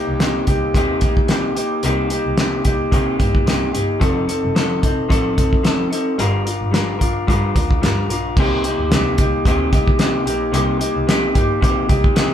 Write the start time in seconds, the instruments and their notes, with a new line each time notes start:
Already playing: clean electric guitar A#3 D#4 G4
0.08 double bass C2
0.20 clean electric guitar C3 A#3 D#4 G4, snare, closed hi-hat
0.47 double bass C2, clean electric guitar D#4 G4, kick, closed hi-hat
0.51 clean electric guitar A#3
0.74 double bass D#2, clean electric guitar C3 A#3 D#4 G4, kick, closed hi-hat
1.01 double bass A#1, clean electric guitar D#4 G4, kick, closed hi-hat
1.05 clean electric guitar A#3
1.17 kick
1.28 clean electric guitar C3 A#3 D#4 G4, snare, closed hi-hat
1.55 clean electric guitar A#3 D#4 G4, closed hi-hat
1.83 double bass C2, clean electric guitar C3 A#3 D#4 G4, closed hi-hat
2.10 clean electric guitar D#4 G4, closed hi-hat
2.15 clean electric guitar A#3
2.26 double bass C2
2.37 clean electric guitar C3 A#3 D#4 G4, snare, closed hi-hat
2.65 double bass C2, clean electric guitar A#3 D#4 G4, kick, closed hi-hat
2.91 clean electric guitar C3 A#3 D#4 G4, double bass C3, kick, closed hi-hat
3.19 double bass G2, clean electric guitar A#3 D#4 G4, kick, closed hi-hat
3.35 kick
3.46 double bass C2, clean electric guitar C3 A#3 D#4 G4, snare, closed hi-hat
3.73 double bass G1, clean electric guitar A#3 D#4 G4, closed hi-hat
4.00 double bass F1, clean electric guitar F3 C4 D#4 A4, kick, closed hi-hat
4.27 clean electric guitar C4 D#4 A4, closed hi-hat
4.44 double bass F1
4.55 clean electric guitar F3 C4 D#4 A4, snare, closed hi-hat
4.82 double bass F1, clean electric guitar C4 D#4 A4, kick, closed hi-hat
5.09 double bass A1, clean electric guitar F3 C4 D#4 A4, kick, closed hi-hat
5.35 double bass F1, clean electric guitar C4 D#4 A4, kick, closed hi-hat
5.53 kick
5.63 clean electric guitar F3 C4 D#4 A4, snare, closed hi-hat
5.90 clean electric guitar C4 D#4 A4, closed hi-hat
6.18 double bass G1, clean electric guitar G3 D4 F4 A#4, closed hi-hat
6.45 clean electric guitar D4 F4 A#4, closed hi-hat
6.62 double bass G1
6.71 clean electric guitar G3 D4 F4 A#4, snare, closed hi-hat
6.99 double bass G1, clean electric guitar D4 F4 A#4, kick, closed hi-hat
7.27 double bass G2, clean electric guitar G3 D4 F4 A#4, kick, closed hi-hat
7.55 double bass D2, clean electric guitar D4 F4 A#4, kick, closed hi-hat
7.71 kick
7.82 double bass G1, clean electric guitar G3 D4 F4 A#4, snare, closed hi-hat
8.09 double bass A#1, clean electric guitar F4 A#4, closed hi-hat
8.13 clean electric guitar D4
8.37 double bass C2, clean electric guitar C3 A#3 D#4 G4, kick, crash
8.64 clean electric guitar D#4 G4, closed hi-hat
8.69 clean electric guitar A#3
8.78 double bass D2
8.90 double bass C2, clean electric guitar C3 A#3 D#4, snare, closed hi-hat
8.95 clean electric guitar G4
9.18 double bass C2, clean electric guitar D#4 G4, kick, closed hi-hat
9.22 clean electric guitar A#3
9.45 double bass D2, clean electric guitar C3 A#3 D#4 G4, kick, closed hi-hat
9.73 double bass C2, clean electric guitar A#3 D#4 G4, kick, closed hi-hat
9.88 kick
9.99 clean electric guitar C3 A#3 D#4 G4, snare, closed hi-hat
10.26 double bass A#1, clean electric guitar A#3 D#4 G4, closed hi-hat
10.52 double bass C2, clean electric guitar C3 A#3 D#4 G4, closed hi-hat
10.79 clean electric guitar A#3 D#4 G4, closed hi-hat
10.96 double bass C2
11.07 clean electric guitar C3 A#3 D#4 G4, snare, closed hi-hat
11.34 double bass G1, clean electric guitar A#3 D#4 G4, kick, closed hi-hat
11.61 double bass A#1, clean electric guitar C3 A#3 D#4 G4, kick, closed hi-hat
11.88 double bass C2, clean electric guitar A#3 D#4 G4, kick, closed hi-hat
12.04 kick
12.15 clean electric guitar C3 A#3 D#4 G4, snare, closed hi-hat